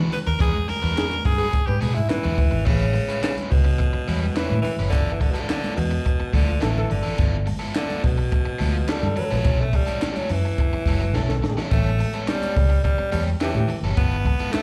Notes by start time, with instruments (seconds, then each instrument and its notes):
Already playing: overdriven electric guitar B4
0.00 overdriven electric guitar G#3 D4 F#4
0.12 tenor saxophone B4, muted overdriven electric guitar stroke, open hi-hat, low conga
0.27 fingered electric bass D#2, tenor saxophone A#4, muted overdriven electric guitar stroke
0.39 fingered electric bass E2, overdriven electric guitar G#3 D4 F#4 B4, tenor saxophone G#4, kick, closed hi-hat, low conga
0.54 muted overdriven electric guitar stroke
0.68 tenor saxophone A#4, muted overdriven electric guitar stroke, open hi-hat, high conga
0.82 fingered electric bass E2, overdriven electric guitar G#3 D4 F#4 B4, high conga
0.96 overdriven electric guitar G#3 D4 F#4 B4, trombone G#4, snare, clap, closed hi-hat, muted conga
1.11 closed hi-hat, high conga
1.25 fingered electric bass G2, tenor saxophone G#4, muted overdriven electric guitar stroke, kick, open hi-hat
1.38 overdriven electric guitar G#3 D4 F#4 B4, trombone G#4
1.53 kick, closed hi-hat, muted conga
1.66 fingered electric bass G#2, tenor saxophone G4, trombone B4, muted overdriven electric guitar stroke
1.81 fingered electric bass B2, overdriven electric guitar G#3 D4 F#4 B4, tenor saxophone G#4, open hi-hat, high conga
1.94 fingered electric bass G#2, tenor saxophone E4, muted overdriven electric guitar stroke
2.09 tenor saxophone E3, trombone B4, muted overdriven electric guitar stroke, snare, clap, closed hi-hat
2.23 fingered electric bass E2, overdriven electric guitar G#3 D4 F#4 B4, high conga, low conga
2.38 fingered electric bass D2, muted overdriven electric guitar stroke, kick, open hi-hat, low conga
2.51 fingered electric bass G#1, muted overdriven electric guitar stroke
2.65 fingered electric bass A1, tenor saxophone C#3, overdriven electric guitar G3 C#4 E4 B4, kick, crash, muted conga, low conga
2.80 muted conga
2.93 muted overdriven electric guitar stroke, open hi-hat, high conga
3.09 overdriven electric guitar G3 C#4 E4 B4, closed hi-hat
3.22 tenor saxophone C#3, overdriven electric guitar G3 C#4 E4 B4, snare, clap, closed hi-hat, muted conga
3.37 closed hi-hat, high conga
3.50 fingered electric bass C#2, tenor saxophone B2, muted overdriven electric guitar stroke, kick, open hi-hat
3.64 muted overdriven electric guitar stroke
3.78 muted overdriven electric guitar stroke, kick, closed hi-hat, muted conga
3.93 muted overdriven electric guitar stroke, muted fingered electric bass stroke
4.08 fingered electric bass E2, overdriven electric guitar G3 C#4 E4 B4, open hi-hat, high conga
4.21 muted overdriven electric guitar stroke
4.35 tenor saxophone E3, overdriven electric guitar G3 C#4 E4 B4, trombone B4, snare, clap, closed hi-hat
4.49 fingered electric bass A2, trombone B4, high conga, low conga
4.62 tenor saxophone E3, muted overdriven electric guitar stroke, open hi-hat, low conga
4.79 fingered electric bass F#1, overdriven electric guitar G3 C#4 E4 B4
4.90 fingered electric bass G1, tenor saxophone D3, overdriven electric guitar F3 B3 E4 A4, kick, closed hi-hat, low conga
5.12 tenor saxophone E3
5.20 tenor saxophone D3, muted overdriven electric guitar stroke, kick, open hi-hat, high conga
5.31 tenor saxophone B2, overdriven electric guitar F3 E4 A4
5.35 overdriven electric guitar B3, closed hi-hat
5.40 tenor saxophone D3
5.48 tenor saxophone D3, overdriven electric guitar F3 B3 E4 A4, snare, clap, closed hi-hat
5.64 closed hi-hat, high conga
5.76 fingered electric bass E2, tenor saxophone B2, muted overdriven electric guitar stroke, open hi-hat
5.91 muted overdriven electric guitar stroke
6.05 muted overdriven electric guitar stroke, kick, closed hi-hat
6.20 muted overdriven electric guitar stroke, muted fingered electric bass stroke
6.33 fingered electric bass D2, tenor saxophone D3, overdriven electric guitar F3 B3 E4 A4, kick, open hi-hat, high conga
6.47 muted overdriven electric guitar stroke
6.60 fingered electric bass A1, tenor saxophone E3, overdriven electric guitar F3 B3 E4 A4, trombone A4, snare, clap, closed hi-hat
6.78 trombone A4, high conga, low conga
6.90 fingered electric bass G1, tenor saxophone D3, muted overdriven electric guitar stroke, open hi-hat, low conga
7.03 overdriven electric guitar F3 B3 E4 A4
7.17 fingered electric bass G1, overdriven electric guitar F3 B3 E4 A4, kick, closed hi-hat, low conga
7.46 muted overdriven electric guitar stroke, open hi-hat, high conga
7.59 overdriven electric guitar F3 B3 E4 A4
7.74 tenor saxophone D3, overdriven electric guitar F3 B3 E4 A4, snare, clap, closed hi-hat
7.90 closed hi-hat, high conga
8.03 fingered electric bass B1, tenor saxophone B2, muted overdriven electric guitar stroke, kick, open hi-hat
8.18 muted overdriven electric guitar stroke
8.31 muted overdriven electric guitar stroke, kick, closed hi-hat, muted conga
8.45 muted overdriven electric guitar stroke, muted fingered electric bass stroke
8.59 fingered electric bass D2, overdriven electric guitar F3 B3 E4 A4, open hi-hat, high conga
8.74 muted overdriven electric guitar stroke
8.88 overdriven electric guitar F3 B3 E4 A4, tenor saxophone G3, trombone A4, snare, clap, closed hi-hat, muted conga
9.01 fingered electric bass G2, trombone A4, muted conga, high conga, low conga
9.16 tenor saxophone F#3, muted overdriven electric guitar stroke, open hi-hat, low conga
9.31 fingered electric bass A#1, overdriven electric guitar F3 B3 E4 A4
9.45 fingered electric bass B1, overdriven electric guitar F#3 C#4 E4 A4, kick, closed hi-hat, low conga
9.61 tenor saxophone A3
9.73 tenor saxophone G3, muted overdriven electric guitar stroke, kick, open hi-hat, high conga
9.86 overdriven electric guitar F#3 C#4 E4 A4, closed hi-hat
10.01 overdriven electric guitar F#3 C#4 E4 A4, snare, clap, closed hi-hat, muted conga
10.12 tenor saxophone G3, closed hi-hat
10.17 tenor saxophone F#3, muted conga, high conga
10.29 fingered electric bass F#2, tenor saxophone E3, muted overdriven electric guitar stroke, open hi-hat
10.45 muted overdriven electric guitar stroke
10.58 muted overdriven electric guitar stroke, kick, closed hi-hat
10.73 muted fingered electric bass stroke, muted overdriven electric guitar stroke, muted conga
10.86 fingered electric bass F#1, overdriven electric guitar F#3 C#4 E4 A4, kick, open hi-hat, high conga
11.01 muted overdriven electric guitar stroke
11.14 fingered electric bass B1, overdriven electric guitar F#3 C#4 E4 A4, trombone A4, snare, muted conga
11.28 trombone A4, snare, muted conga, high conga, low conga
11.42 fingered electric bass A1, muted overdriven electric guitar stroke, snare, low conga
11.57 overdriven electric guitar F#3 C#4 E4 A4, snare
11.70 fingered electric bass A1, overdriven electric guitar G3 B3 C#4 A4, tenor saxophone A3, kick, closed hi-hat, low conga
11.86 muted conga
11.99 muted overdriven electric guitar stroke, open hi-hat, high conga
12.13 overdriven electric guitar G3 B3 C#4 A4, closed hi-hat
12.27 overdriven electric guitar G3 B3 C#4 A4, tenor saxophone G3, snare, clap, closed hi-hat, muted conga
12.42 closed hi-hat, muted conga, high conga
12.56 fingered electric bass C#2, muted overdriven electric guitar stroke, kick, open hi-hat
12.69 muted overdriven electric guitar stroke
12.84 tenor saxophone G3, muted overdriven electric guitar stroke, kick, closed hi-hat
12.98 muted overdriven electric guitar stroke, muted fingered electric bass stroke
13.12 fingered electric bass E2, overdriven electric guitar G3 B3 C#4 A4, tenor saxophone G3, open hi-hat, high conga
13.28 muted overdriven electric guitar stroke
13.40 tenor saxophone E3, overdriven electric guitar G3 B3 C#4 A4, trombone G4, snare, clap, closed hi-hat
13.55 fingered electric bass A2, trombone G4, high conga, low conga
13.68 muted overdriven electric guitar stroke, open hi-hat, low conga
13.83 fingered electric bass F#1, overdriven electric guitar G3 B3 C#4 A4
13.97 fingered electric bass G1, overdriven electric guitar F3 B3 E4 A4, tenor saxophone B3, kick, closed hi-hat, muted conga, low conga
14.12 muted conga
14.24 muted overdriven electric guitar stroke, kick, open hi-hat, high conga
14.39 overdriven electric guitar F3 B3 E4 A4, closed hi-hat
14.52 overdriven electric guitar F3 B3 E4 A4, tenor saxophone A3, snare, clap, closed hi-hat